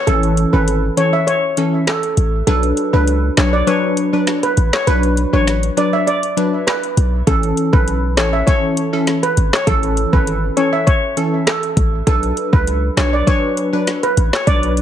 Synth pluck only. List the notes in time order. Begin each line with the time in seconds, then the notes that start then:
0.07 E3 C#4 A4
0.53 E3 C#4 A4
0.97 E3 C#4 A4
1.57 E3 C#4 A4
2.47 F#3 D4 B4
2.93 F#3 D4 B4
3.37 F#3 D4 B4
3.67 F#3 D4 B4
4.13 F#3 D4 B4
4.87 F#3 D4 B4
5.33 F#3 D4 B4
5.77 F#3 D4 B4
6.37 F#3 D4 B4
7.27 E3 C#4 A4
7.73 E3 C#4 A4
8.17 E3 C#4 A4
8.47 E3 C#4 A4
8.93 E3 C#4 A4
9.67 E3 C#4 A4
10.13 E3 C#4 A4
10.57 E3 C#4 A4
11.17 E3 C#4 A4
12.07 F#3 D4 B4
12.53 F#3 D4 B4
12.97 F#3 D4 B4
13.27 F#3 D4 B4
13.73 F#3 D4 B4
14.47 F#3 D4 B4